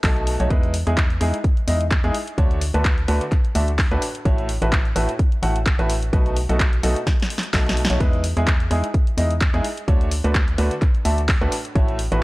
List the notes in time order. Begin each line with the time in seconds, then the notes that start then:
0.04 B1 B2 A3 D#4 F#4 A4, kick, clap, open hi-hat
0.17 closed hi-hat
0.27 open hi-hat
0.40 B1 A3 D#4 F#4 C#5, closed hi-hat
0.50 E2 G#3 D#4 E4 B4, kick, closed hi-hat
0.63 closed hi-hat
0.74 open hi-hat
0.87 E2 G#3 D#4 E4 G#4, closed hi-hat
0.97 kick, clap, closed hi-hat
1.10 closed hi-hat
1.21 E2 G#3 D#4 E4 G#4, open hi-hat
1.34 closed hi-hat
1.44 kick, closed hi-hat
1.57 closed hi-hat
1.68 E2 G#3 D#4 E4 D#5, open hi-hat
1.81 closed hi-hat
1.91 kick, clap, closed hi-hat
2.04 E2 G#3 D#4 E4 G#4, closed hi-hat
2.15 open hi-hat
2.27 closed hi-hat
2.38 D2 D3 A3 D4 F#4 C#5, kick, closed hi-hat
2.51 closed hi-hat
2.61 open hi-hat
2.74 D2 D3 A3 D4 F#4 B4, closed hi-hat
2.85 kick, clap, closed hi-hat
2.98 closed hi-hat
3.08 D2 D3 A3 D4 F#4 B4, open hi-hat
3.21 closed hi-hat
3.32 kick, clap, closed hi-hat
3.45 closed hi-hat
3.55 D2 D3 A3 D4 F#4 E5, open hi-hat
3.68 closed hi-hat
3.79 kick, clap, open hi-hat
3.91 D2 A2 A3 D4 F#4 B4, closed hi-hat
4.02 open hi-hat
4.15 closed hi-hat
4.25 A1 A2 A3 E4 F#4 C#5, kick, closed hi-hat
4.38 closed hi-hat
4.49 open hi-hat
4.62 A1 A2 A3 E4 F#4 B4, closed hi-hat
4.72 kick, clap, closed hi-hat
4.85 closed hi-hat
4.96 A1 A2 A3 E4 F#4 B4, open hi-hat
5.09 closed hi-hat
5.19 kick, closed hi-hat
5.32 closed hi-hat
5.43 A1 A2 A3 E4 F#4 F#5, open hi-hat
5.56 closed hi-hat
5.66 kick, clap, closed hi-hat
5.79 A1 A2 A3 E4 F#4 B4, closed hi-hat
5.90 open hi-hat
6.03 closed hi-hat
6.13 B1 B2 A3 D#4 F#4 B4, kick, closed hi-hat
6.26 closed hi-hat
6.36 open hi-hat
6.49 B1 B2 A3 D#4 F#4 A4, closed hi-hat
6.60 kick, clap, closed hi-hat
6.73 closed hi-hat
6.83 B1 B2 A3 D#4 F#4 A4, open hi-hat
6.96 closed hi-hat
7.07 kick, snare, closed hi-hat
7.20 snare, closed hi-hat
7.30 open hi-hat
7.38 snare
7.43 closed hi-hat
7.54 B1 B2 A3 D#4 F#4 A4, kick, snare, clap, open hi-hat
7.66 snare, closed hi-hat
7.77 open hi-hat
7.85 snare
7.90 B1 A3 D#4 F#4 C#5, closed hi-hat
8.00 E2 G#3 D#4 E4 B4, kick, closed hi-hat
8.13 closed hi-hat
8.24 open hi-hat
8.37 E2 G#3 D#4 E4 G#4, closed hi-hat
8.47 kick, clap, closed hi-hat
8.60 closed hi-hat
8.71 E2 G#3 D#4 E4 G#4, open hi-hat
8.84 closed hi-hat
8.94 kick, closed hi-hat
9.07 closed hi-hat
9.18 E2 G#3 D#4 E4 D#5, open hi-hat
9.31 closed hi-hat
9.41 kick, clap, closed hi-hat
9.54 E2 G#3 D#4 E4 G#4, closed hi-hat
9.64 open hi-hat
9.78 closed hi-hat
9.88 D2 D3 A3 D4 F#4 C#5, kick, closed hi-hat
10.01 closed hi-hat
10.11 open hi-hat
10.24 D2 D3 A3 D4 F#4 B4, closed hi-hat
10.35 kick, clap, closed hi-hat
10.48 closed hi-hat
10.58 D2 D3 A3 D4 F#4 B4, open hi-hat
10.71 closed hi-hat
10.82 kick, clap, closed hi-hat
10.95 closed hi-hat
11.05 D2 D3 A3 D4 F#4 E5, open hi-hat
11.18 closed hi-hat
11.29 kick, clap, open hi-hat
11.41 D2 A2 A3 D4 F#4 B4, closed hi-hat
11.52 open hi-hat
11.65 closed hi-hat
11.75 A1 A2 A3 E4 F#4 C#5, kick, closed hi-hat
11.88 closed hi-hat
11.99 open hi-hat
12.12 A1 A2 A3 E4 F#4 B4, closed hi-hat